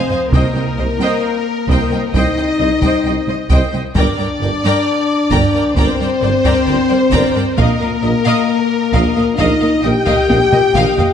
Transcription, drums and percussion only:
0.33 taiko
1.69 taiko
2.14 taiko
2.82 taiko
3.50 taiko
3.95 taiko
5.31 taiko
5.77 taiko
6.45 taiko
7.13 taiko
7.58 taiko
8.94 taiko
9.38 taiko
10.07 taiko
10.30 taiko high
10.52 taiko low-mid
10.75 taiko mid
10.98 taiko low

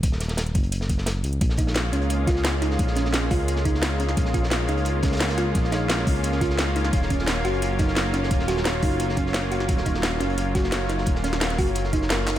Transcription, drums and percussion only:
0.03 kick, closed hi-hat
0.12 snare
0.20 snare, closed hi-hat
0.28 snare, closed hi-hat
0.37 snare, closed hi-hat
0.46 closed hi-hat
0.55 kick, closed hi-hat
0.63 closed hi-hat
0.72 closed hi-hat
0.81 snare
0.89 kick, closed hi-hat
0.98 snare
1.06 snare, closed hi-hat
1.24 closed hi-hat
1.33 closed hi-hat
1.41 kick, closed hi-hat
1.49 snare
1.57 kick, closed hi-hat
1.67 snare
1.74 snare, closed hi-hat
1.93 closed hi-hat
2.02 closed hi-hat
2.10 closed hi-hat
2.27 kick, snare, closed hi-hat
2.36 snare
2.44 snare, closed hi-hat
2.62 snare, closed hi-hat
2.71 snare
2.79 kick, closed hi-hat
2.87 snare
2.95 snare, closed hi-hat
3.05 snare
3.13 snare, closed hi-hat
3.31 kick, closed hi-hat, open hi-hat
3.40 closed hi-hat
3.48 closed hi-hat
3.56 snare
3.65 kick, closed hi-hat
3.74 snare
3.82 snare, closed hi-hat
4.00 closed hi-hat
4.09 snare
4.17 kick, closed hi-hat
4.25 snare
4.34 kick, closed hi-hat
4.43 snare
4.51 snare, closed hi-hat
4.68 closed hi-hat
4.77 closed hi-hat
4.85 closed hi-hat
5.03 kick, snare, closed hi-hat
5.12 snare, closed hi-hat
5.16 snare, closed hi-hat
5.20 snare, closed hi-hat
5.29 snare, closed hi-hat
5.38 snare, closed hi-hat
5.54 kick, snare, closed hi-hat
5.64 snare
5.72 snare, closed hi-hat
5.89 snare, closed hi-hat
5.98 snare
6.07 kick, closed hi-hat, open hi-hat
6.16 closed hi-hat
6.24 closed hi-hat
6.32 snare
6.41 kick, closed hi-hat
6.50 snare
6.58 snare, closed hi-hat
6.76 closed hi-hat
6.85 snare
6.93 kick, closed hi-hat
7.02 snare
7.10 kick, closed hi-hat
7.19 snare
7.27 snare, closed hi-hat
7.45 closed hi-hat
7.53 closed hi-hat
7.62 closed hi-hat
7.79 kick, snare, closed hi-hat
7.88 snare
7.96 snare, closed hi-hat
8.14 snare, closed hi-hat
8.23 snare
8.31 kick, closed hi-hat
8.39 snare
8.48 snare, closed hi-hat
8.57 snare
8.65 snare, closed hi-hat
8.82 kick, closed hi-hat, open hi-hat
8.90 closed hi-hat
9.00 closed hi-hat
9.09 snare
9.17 kick, closed hi-hat
9.27 snare
9.34 snare, closed hi-hat
9.52 closed hi-hat
9.60 snare
9.68 kick, closed hi-hat
9.77 snare
9.85 kick, closed hi-hat
9.94 snare
10.03 snare, closed hi-hat
10.20 closed hi-hat
10.30 closed hi-hat
10.38 closed hi-hat
10.55 kick, snare, closed hi-hat
10.64 snare
10.72 snare, closed hi-hat
10.89 snare, closed hi-hat
10.98 snare
11.06 kick, closed hi-hat
11.15 snare
11.24 snare, closed hi-hat
11.32 snare, closed hi-hat
11.41 snare, closed hi-hat
11.50 snare, closed hi-hat
11.58 kick, closed hi-hat, open hi-hat
11.66 closed hi-hat
11.75 closed hi-hat
11.84 snare
11.93 kick, closed hi-hat
12.02 snare
12.10 snare, closed hi-hat
12.27 snare, clap, closed hi-hat

